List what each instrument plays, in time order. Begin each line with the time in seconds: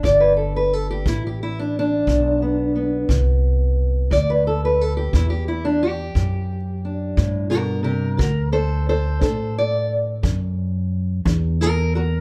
Already playing: steel-string acoustic guitar D4
0.03 upright bass G1, steel-string acoustic guitar G2 D5, kick
0.20 steel-string acoustic guitar B4
0.37 steel-string acoustic guitar A4
0.56 steel-string acoustic guitar B4
0.73 steel-string acoustic guitar A4
0.91 steel-string acoustic guitar G4
1.06 upright bass A1, steel-string acoustic guitar D3 E4, kick
1.27 steel-string acoustic guitar G4
1.43 steel-string acoustic guitar E4
1.59 steel-string acoustic guitar D4
1.79 steel-string acoustic guitar D4
2.07 upright bass B1, steel-string acoustic guitar G2, kick
2.42 steel-string acoustic guitar B3
2.76 steel-string acoustic guitar B3
3.09 upright bass C2, steel-string acoustic guitar D3, kick
4.11 upright bass D2, steel-string acoustic guitar G2 D5, kick
4.30 steel-string acoustic guitar B4
4.47 steel-string acoustic guitar A4
4.65 steel-string acoustic guitar B4
4.81 steel-string acoustic guitar A4
4.97 steel-string acoustic guitar G4
5.13 upright bass E2, steel-string acoustic guitar D3 E4, kick
5.30 steel-string acoustic guitar G4
5.48 steel-string acoustic guitar E4
5.65 steel-string acoustic guitar D4
5.83 steel-string acoustic guitar G4
6.15 upright bass F#2, steel-string acoustic guitar G2, kick
6.85 steel-string acoustic guitar D4
7.17 upright bass G2, steel-string acoustic guitar A2, kick
7.50 steel-string acoustic guitar B2 G4 A#4
7.83 steel-string acoustic guitar C3 G4 A#4
8.17 upright bass D2, steel-string acoustic guitar D3 F#4 A#4, kick
8.52 steel-string acoustic guitar A4 C5
8.89 steel-string acoustic guitar A4 C5
9.21 upright bass A2, steel-string acoustic guitar D4 A4 C5, kick
9.58 steel-string acoustic guitar D5
10.23 upright bass F#2, steel-string acoustic guitar D3, kick
11.25 upright bass E2, steel-string acoustic guitar D4, kick
11.61 steel-string acoustic guitar F#4 A#4
11.95 steel-string acoustic guitar F#4 A#4